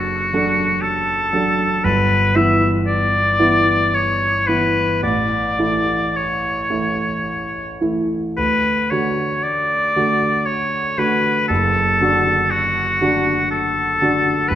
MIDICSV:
0, 0, Header, 1, 3, 480
1, 0, Start_track
1, 0, Key_signature, 2, "major"
1, 0, Tempo, 1011804
1, 872, Time_signature, 3, 2, 24, 8
1, 1358, Tempo, 1067616
1, 1838, Tempo, 1111111
1, 3758, Tempo, 1069519
1, 4238, Tempo, 1022147
1, 5678, Tempo, 998336
1, 6659, End_track
2, 0, Start_track
2, 0, Title_t, "Oboe"
2, 0, Program_c, 0, 68
2, 0, Note_on_c, 0, 66, 58
2, 388, Note_on_c, 0, 69, 62
2, 395, Note_off_c, 0, 66, 0
2, 873, Note_on_c, 0, 71, 68
2, 880, Note_off_c, 0, 69, 0
2, 1120, Note_on_c, 0, 76, 60
2, 1127, Note_off_c, 0, 71, 0
2, 1275, Note_off_c, 0, 76, 0
2, 1360, Note_on_c, 0, 74, 72
2, 1844, Note_on_c, 0, 73, 62
2, 1850, Note_off_c, 0, 74, 0
2, 2071, Note_on_c, 0, 71, 56
2, 2078, Note_off_c, 0, 73, 0
2, 2310, Note_off_c, 0, 71, 0
2, 2313, Note_on_c, 0, 74, 59
2, 2801, Note_on_c, 0, 73, 47
2, 2808, Note_off_c, 0, 74, 0
2, 3520, Note_off_c, 0, 73, 0
2, 3756, Note_on_c, 0, 71, 61
2, 3995, Note_on_c, 0, 73, 48
2, 4002, Note_off_c, 0, 71, 0
2, 4230, Note_on_c, 0, 74, 66
2, 4237, Note_off_c, 0, 73, 0
2, 4712, Note_on_c, 0, 73, 59
2, 4719, Note_off_c, 0, 74, 0
2, 4961, Note_on_c, 0, 71, 57
2, 4968, Note_off_c, 0, 73, 0
2, 5191, Note_off_c, 0, 71, 0
2, 5194, Note_on_c, 0, 69, 66
2, 5677, Note_on_c, 0, 66, 61
2, 5684, Note_off_c, 0, 69, 0
2, 6154, Note_off_c, 0, 66, 0
2, 6157, Note_on_c, 0, 69, 66
2, 6626, Note_on_c, 0, 71, 65
2, 6633, Note_off_c, 0, 69, 0
2, 6659, Note_off_c, 0, 71, 0
2, 6659, End_track
3, 0, Start_track
3, 0, Title_t, "Grand piano"
3, 0, Program_c, 1, 0
3, 0, Control_c, 1, 64, 127
3, 0, Note_on_c, 1, 30, 38
3, 0, Note_on_c, 1, 54, 31
3, 0, Note_on_c, 1, 62, 29
3, 0, Note_on_c, 1, 69, 32
3, 135, Note_off_c, 1, 54, 0
3, 136, Note_off_c, 1, 62, 0
3, 137, Note_off_c, 1, 69, 0
3, 158, Note_on_c, 1, 54, 31
3, 162, Note_on_c, 1, 62, 33
3, 162, Note_on_c, 1, 69, 35
3, 612, Note_off_c, 1, 54, 0
3, 614, Note_off_c, 1, 62, 0
3, 614, Note_off_c, 1, 69, 0
3, 630, Note_on_c, 1, 54, 32
3, 633, Note_on_c, 1, 62, 31
3, 636, Note_on_c, 1, 69, 36
3, 853, Note_off_c, 1, 54, 0
3, 855, Note_off_c, 1, 62, 0
3, 856, Note_off_c, 1, 69, 0
3, 875, Note_on_c, 1, 31, 45
3, 880, Control_c, 1, 64, 0
3, 883, Note_off_c, 1, 30, 0
3, 959, Control_c, 1, 64, 127
3, 1110, Note_off_c, 1, 31, 0
3, 1117, Note_on_c, 1, 52, 35
3, 1121, Note_on_c, 1, 59, 35
3, 1121, Note_on_c, 1, 64, 37
3, 1578, Note_off_c, 1, 52, 0
3, 1579, Note_off_c, 1, 59, 0
3, 1580, Note_off_c, 1, 64, 0
3, 1596, Note_on_c, 1, 52, 36
3, 1598, Note_on_c, 1, 59, 36
3, 1599, Note_on_c, 1, 64, 36
3, 2056, Note_off_c, 1, 52, 0
3, 2057, Note_off_c, 1, 59, 0
3, 2058, Note_off_c, 1, 64, 0
3, 2077, Note_on_c, 1, 52, 29
3, 2080, Note_on_c, 1, 59, 28
3, 2081, Note_on_c, 1, 64, 29
3, 2296, Note_off_c, 1, 52, 0
3, 2297, Note_off_c, 1, 59, 0
3, 2298, Note_off_c, 1, 64, 0
3, 2313, Note_on_c, 1, 33, 36
3, 2318, Control_c, 1, 64, 0
3, 2403, Control_c, 1, 64, 127
3, 2547, Note_off_c, 1, 33, 0
3, 2555, Note_on_c, 1, 52, 26
3, 2556, Note_on_c, 1, 57, 26
3, 2558, Note_on_c, 1, 64, 29
3, 3018, Note_off_c, 1, 52, 0
3, 3018, Note_off_c, 1, 57, 0
3, 3019, Note_off_c, 1, 64, 0
3, 3035, Note_on_c, 1, 52, 26
3, 3036, Note_on_c, 1, 57, 26
3, 3037, Note_on_c, 1, 64, 28
3, 3500, Note_off_c, 1, 52, 0
3, 3500, Note_off_c, 1, 57, 0
3, 3501, Note_off_c, 1, 64, 0
3, 3514, Note_on_c, 1, 52, 24
3, 3516, Note_on_c, 1, 57, 23
3, 3516, Note_on_c, 1, 64, 25
3, 3739, Note_off_c, 1, 52, 0
3, 3740, Note_off_c, 1, 57, 0
3, 3740, Note_off_c, 1, 64, 0
3, 3759, Note_on_c, 1, 38, 39
3, 3765, Control_c, 1, 64, 0
3, 3846, Control_c, 1, 64, 127
3, 3993, Note_off_c, 1, 38, 0
3, 4000, Note_on_c, 1, 50, 28
3, 4002, Note_on_c, 1, 57, 27
3, 4005, Note_on_c, 1, 66, 31
3, 4463, Note_off_c, 1, 50, 0
3, 4464, Note_off_c, 1, 57, 0
3, 4465, Note_off_c, 1, 66, 0
3, 4481, Note_on_c, 1, 50, 29
3, 4482, Note_on_c, 1, 57, 30
3, 4483, Note_on_c, 1, 66, 34
3, 4940, Note_off_c, 1, 50, 0
3, 4941, Note_off_c, 1, 57, 0
3, 4941, Note_off_c, 1, 66, 0
3, 4959, Note_on_c, 1, 50, 30
3, 4959, Note_on_c, 1, 57, 29
3, 4962, Note_on_c, 1, 66, 32
3, 5182, Note_off_c, 1, 50, 0
3, 5183, Note_off_c, 1, 57, 0
3, 5184, Note_off_c, 1, 66, 0
3, 5203, Note_on_c, 1, 30, 44
3, 5210, Control_c, 1, 64, 0
3, 5300, Control_c, 1, 64, 127
3, 5436, Note_off_c, 1, 30, 0
3, 5443, Note_on_c, 1, 50, 33
3, 5445, Note_on_c, 1, 62, 33
3, 5447, Note_on_c, 1, 66, 36
3, 5899, Note_off_c, 1, 50, 0
3, 5899, Note_off_c, 1, 62, 0
3, 5901, Note_off_c, 1, 66, 0
3, 5919, Note_on_c, 1, 50, 34
3, 5921, Note_on_c, 1, 62, 35
3, 5923, Note_on_c, 1, 66, 40
3, 6377, Note_off_c, 1, 50, 0
3, 6378, Note_off_c, 1, 62, 0
3, 6380, Note_off_c, 1, 66, 0
3, 6400, Note_on_c, 1, 50, 34
3, 6404, Note_on_c, 1, 62, 33
3, 6404, Note_on_c, 1, 66, 35
3, 6620, Note_off_c, 1, 50, 0
3, 6622, Note_off_c, 1, 62, 0
3, 6622, Note_off_c, 1, 66, 0
3, 6639, Note_on_c, 1, 31, 45
3, 6644, Control_c, 1, 64, 0
3, 6659, Note_off_c, 1, 31, 0
3, 6659, End_track
0, 0, End_of_file